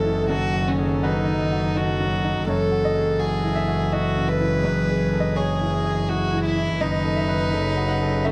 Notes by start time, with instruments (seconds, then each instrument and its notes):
Already playing: double bass F#1, grand piano F#2 C#3 E4 F#4 G#4 B4 C#5 D#5, cello E3, violin A4, viola A4
0.05 grand piano E4
0.29 grand piano F#2 A4, cello D#3, violin F#4
0.54 grand piano F#4
0.67 violin C#4
0.78 grand piano G#4
1.02 violin D#4, grand piano F#4 B4
1.27 grand piano D#4
1.52 grand piano F#4
1.75 grand piano D#4, violin F#4
2.00 grand piano F#3
2.24 grand piano D#4
2.47 double bass F#1, grand piano F#2 C#5, cello E3, viola A4, violin A4
2.71 grand piano F#4
2.85 grand piano D#5
2.95 grand piano G#4
3.19 grand piano F#4, violin G#4
3.44 grand piano E4
3.55 grand piano E5
3.68 grand piano F#4
3.92 grand piano E4 D#5, violin F#4
4.17 grand piano C#3
4.29 violin B4
4.40 grand piano E4
4.64 grand piano F#2 B4, viola G#4
4.89 grand piano G#4
5.12 grand piano A4
5.20 grand piano D#5
5.36 grand piano G#4 C#5, violin G#4
5.61 grand piano E4
5.85 grand piano G#4
6.09 grand piano E4, violin F#4
6.33 grand piano E3
6.44 violin E4
6.57 grand piano E4
6.81 double bass F#1, grand piano F#2 D#5, cello D#3, violin D#4, viola B4
7.05 grand piano A4
7.16 grand piano E5
7.29 grand piano B4
7.53 cello C#3, grand piano A4
7.77 grand piano F#4
7.88 grand piano F#5
8.01 grand piano A4
8.24 violin C#4, grand piano F#4 E5, viola A4